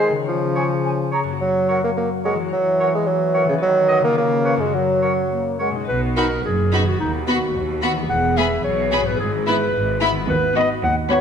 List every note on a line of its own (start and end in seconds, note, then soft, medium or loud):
0.00 0.21 D#3 soft
0.00 0.26 D#3 medium
0.00 0.12 G#3 medium
0.00 0.13 G#3 soft
0.00 0.25 F#4 soft
0.00 0.17 G#4 soft
0.00 0.28 C5 soft
0.10 1.34 C#3 soft
0.14 1.36 G#3 soft
0.19 1.39 G#4 soft
0.23 1.36 C#5 soft
0.28 1.13 C#3 soft
0.28 1.11 F3 medium
0.54 0.65 G#4 soft
0.54 0.66 C#5 soft
0.54 0.62 G#5 soft
0.84 0.90 G#5 soft
1.12 1.23 G#4 soft
1.12 1.22 C#5 soft
1.12 1.19 A#5 soft
1.23 2.46 F#2 soft
1.28 2.38 A#3 soft
1.32 2.43 F#4 soft
1.37 1.80 F#3 medium
1.37 2.47 C#5 soft
1.42 2.49 F#3 soft
1.68 1.80 A#4 soft
1.68 1.79 C#5 soft
1.68 1.76 F#5 soft
1.84 1.90 A#3 medium
1.97 2.10 A#3 medium
2.25 2.37 G#3 medium
2.25 2.35 A#4 soft
2.25 2.35 C#5 soft
2.25 2.32 F#5 soft
2.35 3.55 E3 soft
2.39 3.58 A#3 soft
2.44 3.52 F#4 soft
2.48 3.62 C#5 soft
2.52 3.63 E3 medium
2.52 2.93 F#3 medium
2.80 2.90 A#4 soft
2.80 2.90 C#5 soft
2.80 2.87 F#5 soft
2.95 3.08 G#3 medium
3.07 3.48 F#3 medium
3.35 3.45 A#4 soft
3.35 3.44 C#5 soft
3.35 3.41 F#5 soft
3.44 4.11 D#3 soft
3.49 3.55 C#3 medium
3.49 4.70 B3 soft
3.53 4.15 F#4 soft
3.58 4.12 B4 soft
3.62 4.17 D#3 medium
3.62 4.03 F#3 medium
3.89 3.99 B4 medium
3.89 3.99 D#5 medium
3.89 3.96 F#5 soft
4.00 4.67 C#3 medium
4.04 4.17 A#3 medium
4.04 4.59 C#4 soft
4.08 4.72 F4 soft
4.13 4.74 B4 soft
4.18 4.75 C#3 medium
4.18 4.62 A#3 medium
4.44 4.55 B4 soft
4.44 4.55 C#5 soft
4.44 4.52 F5 soft
4.56 5.82 F#2 soft
4.56 4.75 G#3 medium
4.61 5.84 C#4 soft
4.65 5.79 F#4 soft
4.70 5.89 A#4 soft
4.74 5.60 F#3 medium
4.74 5.26 F#3 soft
5.02 5.13 A#4 soft
5.02 5.12 C#5 soft
5.02 5.09 F#5 soft
5.32 5.58 A#3 soft
5.59 5.88 G#3 soft
5.59 5.70 A#4 soft
5.59 5.70 C#5 soft
5.59 5.67 F#5 soft
5.71 6.94 B2 soft
5.75 8.05 D#4 soft
5.80 6.91 F#4 soft
5.84 6.95 B4 soft
5.84 6.01 B4 medium
5.88 6.35 B1 medium
5.88 6.35 B2 medium
6.17 6.27 B3 soft
6.17 6.25 D#4 soft
6.17 6.27 D#4 soft
6.17 6.25 F#4 soft
6.17 6.44 A#4 medium
6.17 6.25 B5 soft
6.45 6.91 F#1 soft
6.45 6.91 F#2 medium
6.45 6.86 G#4 medium
6.72 6.83 B3 soft
6.72 6.83 D#4 soft
6.72 6.81 D#4 soft
6.72 6.82 F#4 soft
6.72 6.80 B5 soft
6.83 8.03 D#3 soft
6.87 7.95 B3 soft
6.87 6.99 F#4 medium
6.92 8.07 F#4 soft
6.96 7.46 D#2 medium
6.96 7.12 D#4 medium
6.96 8.04 B4 soft
7.28 7.36 B3 soft
7.28 7.38 B3 soft
7.28 7.81 F#4 medium
7.28 7.38 F#4 soft
7.28 7.37 F#4 soft
7.28 7.36 B5 soft
7.55 8.00 D#2 medium
7.82 7.91 B3 soft
7.82 7.93 B3 soft
7.82 7.91 F#4 soft
7.82 7.92 F#4 soft
7.82 7.90 B5 soft
7.91 9.13 E3 soft
7.96 9.05 B3 soft
8.01 10.27 G#4 soft
8.05 9.14 B4 soft
8.09 8.55 E1 medium
8.09 8.55 E2 medium
8.09 8.39 F#5 medium
8.37 8.47 B3 soft
8.37 8.45 B3 soft
8.37 8.45 G#4 soft
8.37 8.47 G#4 soft
8.37 8.63 E5 medium
8.37 8.46 B5 soft
8.64 9.10 B1 medium
8.64 9.10 B2 medium
8.64 9.08 C#5 medium
8.92 9.02 B3 medium
8.92 9.00 B3 soft
8.92 9.00 G#4 soft
8.92 9.02 G#4 soft
8.92 9.00 B5 soft
9.01 10.22 G#2 soft
9.06 10.14 B3 soft
9.06 9.19 B4 medium
9.10 10.27 E4 soft
9.15 10.24 B4 soft
9.19 9.65 G#1 medium
9.19 9.65 G#2 medium
9.19 9.32 G#4 medium
9.47 9.57 B3 medium
9.47 9.56 B3 medium
9.47 9.55 E4 soft
9.47 9.57 E4 soft
9.47 10.01 B4 medium
9.47 9.55 B5 soft
9.74 10.20 G#1 medium
9.74 10.20 G#2 medium
10.01 10.11 B3 medium
10.01 10.10 B3 soft
10.01 10.09 E4 medium
10.01 10.12 E4 medium
10.01 10.10 B5 medium
10.11 11.19 D#3 soft
10.16 11.21 B3 soft
10.20 11.21 F#4 soft
10.25 11.21 B4 soft
10.29 10.73 D#2 medium
10.29 10.55 B4 medium
10.56 10.66 B3 medium
10.56 10.77 B3 medium
10.56 10.66 F#4 medium
10.56 10.77 F#4 medium
10.56 10.69 D#5 medium
10.56 10.78 B5 medium
10.84 11.21 D#2 medium
10.84 10.96 F#5 medium
11.11 11.21 B3 medium
11.11 11.21 F#4 medium
11.11 11.21 C#5 medium
11.11 11.21 B5 medium